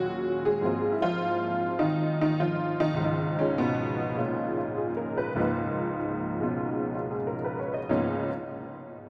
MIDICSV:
0, 0, Header, 1, 2, 480
1, 0, Start_track
1, 0, Tempo, 592885
1, 517, Time_signature, 4, 2, 24, 8
1, 4356, Tempo, 628931
1, 6276, Tempo, 604230
1, 7225, End_track
2, 0, Start_track
2, 0, Title_t, "Honky-tonk piano"
2, 0, Program_c, 0, 3
2, 0, Note_on_c, 0, 39, 53
2, 0, Note_on_c, 0, 46, 42
2, 0, Note_on_c, 0, 51, 40
2, 0, Note_on_c, 0, 54, 73
2, 0, Note_on_c, 0, 58, 47
2, 0, Note_on_c, 0, 66, 100
2, 339, Note_off_c, 0, 54, 0
2, 366, Note_on_c, 0, 68, 86
2, 378, Note_off_c, 0, 66, 0
2, 378, Note_on_c, 0, 56, 73
2, 493, Note_on_c, 0, 44, 46
2, 495, Note_off_c, 0, 39, 0
2, 498, Note_on_c, 0, 53, 43
2, 500, Note_off_c, 0, 58, 0
2, 507, Note_off_c, 0, 46, 0
2, 512, Note_on_c, 0, 58, 41
2, 514, Note_off_c, 0, 51, 0
2, 520, Note_on_c, 0, 60, 42
2, 529, Note_on_c, 0, 65, 55
2, 746, Note_on_c, 0, 64, 64
2, 751, Note_off_c, 0, 56, 0
2, 785, Note_off_c, 0, 68, 0
2, 816, Note_off_c, 0, 65, 0
2, 828, Note_on_c, 0, 65, 102
2, 832, Note_off_c, 0, 53, 0
2, 836, Note_off_c, 0, 64, 0
2, 845, Note_on_c, 0, 53, 75
2, 1443, Note_off_c, 0, 53, 0
2, 1450, Note_on_c, 0, 63, 94
2, 1470, Note_on_c, 0, 51, 72
2, 1486, Note_off_c, 0, 65, 0
2, 1768, Note_off_c, 0, 63, 0
2, 1778, Note_off_c, 0, 51, 0
2, 1793, Note_on_c, 0, 63, 95
2, 1809, Note_on_c, 0, 51, 72
2, 1935, Note_off_c, 0, 63, 0
2, 1943, Note_on_c, 0, 65, 87
2, 1944, Note_off_c, 0, 51, 0
2, 1957, Note_on_c, 0, 53, 70
2, 2260, Note_off_c, 0, 53, 0
2, 2268, Note_on_c, 0, 63, 103
2, 2278, Note_on_c, 0, 51, 70
2, 2286, Note_off_c, 0, 65, 0
2, 2380, Note_on_c, 0, 37, 59
2, 2386, Note_off_c, 0, 44, 0
2, 2398, Note_on_c, 0, 44, 52
2, 2417, Note_on_c, 0, 53, 52
2, 2427, Note_off_c, 0, 58, 0
2, 2431, Note_off_c, 0, 60, 0
2, 2456, Note_off_c, 0, 63, 0
2, 2469, Note_on_c, 0, 63, 64
2, 2727, Note_off_c, 0, 51, 0
2, 2743, Note_on_c, 0, 61, 88
2, 2761, Note_on_c, 0, 49, 65
2, 2898, Note_off_c, 0, 49, 0
2, 2900, Note_on_c, 0, 59, 93
2, 2904, Note_off_c, 0, 61, 0
2, 2913, Note_on_c, 0, 47, 70
2, 3355, Note_off_c, 0, 47, 0
2, 3361, Note_on_c, 0, 58, 48
2, 3370, Note_on_c, 0, 56, 45
2, 3380, Note_on_c, 0, 61, 48
2, 3387, Note_on_c, 0, 46, 61
2, 3391, Note_on_c, 0, 65, 55
2, 3396, Note_off_c, 0, 59, 0
2, 3696, Note_off_c, 0, 65, 0
2, 3708, Note_on_c, 0, 65, 46
2, 3863, Note_on_c, 0, 68, 52
2, 3963, Note_off_c, 0, 65, 0
2, 4022, Note_on_c, 0, 70, 50
2, 4179, Note_off_c, 0, 68, 0
2, 4190, Note_on_c, 0, 71, 59
2, 4282, Note_off_c, 0, 70, 0
2, 4319, Note_off_c, 0, 37, 0
2, 4324, Note_off_c, 0, 44, 0
2, 4331, Note_on_c, 0, 37, 60
2, 4333, Note_off_c, 0, 53, 0
2, 4336, Note_on_c, 0, 44, 54
2, 4337, Note_off_c, 0, 58, 0
2, 4345, Note_on_c, 0, 53, 54
2, 4349, Note_off_c, 0, 56, 0
2, 4349, Note_on_c, 0, 58, 56
2, 4353, Note_off_c, 0, 61, 0
2, 4355, Note_off_c, 0, 63, 0
2, 4366, Note_on_c, 0, 63, 67
2, 4441, Note_off_c, 0, 71, 0
2, 4794, Note_off_c, 0, 46, 0
2, 5136, Note_on_c, 0, 47, 44
2, 5143, Note_on_c, 0, 56, 39
2, 5150, Note_on_c, 0, 59, 40
2, 5152, Note_on_c, 0, 61, 40
2, 5159, Note_on_c, 0, 65, 47
2, 5543, Note_off_c, 0, 65, 0
2, 5555, Note_on_c, 0, 65, 41
2, 5672, Note_on_c, 0, 68, 46
2, 5702, Note_off_c, 0, 65, 0
2, 5798, Note_on_c, 0, 70, 45
2, 5844, Note_off_c, 0, 68, 0
2, 5932, Note_on_c, 0, 71, 43
2, 6031, Note_off_c, 0, 70, 0
2, 6045, Note_on_c, 0, 73, 49
2, 6135, Note_off_c, 0, 71, 0
2, 6155, Note_on_c, 0, 75, 48
2, 6186, Note_off_c, 0, 73, 0
2, 6262, Note_off_c, 0, 61, 0
2, 6264, Note_off_c, 0, 37, 0
2, 6264, Note_off_c, 0, 44, 0
2, 6266, Note_off_c, 0, 47, 0
2, 6266, Note_off_c, 0, 53, 0
2, 6270, Note_off_c, 0, 56, 0
2, 6272, Note_off_c, 0, 58, 0
2, 6273, Note_off_c, 0, 59, 0
2, 6274, Note_off_c, 0, 63, 0
2, 6274, Note_on_c, 0, 61, 78
2, 6275, Note_on_c, 0, 37, 58
2, 6275, Note_on_c, 0, 44, 52
2, 6277, Note_on_c, 0, 53, 51
2, 6284, Note_on_c, 0, 58, 55
2, 6285, Note_on_c, 0, 59, 56
2, 6286, Note_on_c, 0, 63, 69
2, 6322, Note_off_c, 0, 75, 0
2, 6577, Note_off_c, 0, 37, 0
2, 6577, Note_off_c, 0, 44, 0
2, 6578, Note_off_c, 0, 53, 0
2, 6581, Note_off_c, 0, 58, 0
2, 6582, Note_off_c, 0, 59, 0
2, 6582, Note_off_c, 0, 63, 0
2, 6586, Note_off_c, 0, 61, 0
2, 7225, End_track
0, 0, End_of_file